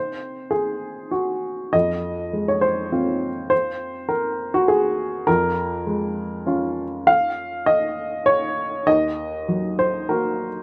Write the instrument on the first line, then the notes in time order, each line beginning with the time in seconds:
upright piano
Already playing: C4 D#4 C5
0.51 G#4
1.11 F#4
1.73 F2 D#5
2.33 G#3
2.48 C#5
2.61 C5
2.92 C4 F4
3.50 C5
4.09 A#4
4.54 F#4
4.68 G#4
5.27 F2 A#4
5.87 G#3
6.46 C#4 F4
7.07 F5
7.66 D#5
8.26 C#5
8.87 D#2 D#5
9.48 F#3
9.79 C5
10.09 A#3 F#4 A#4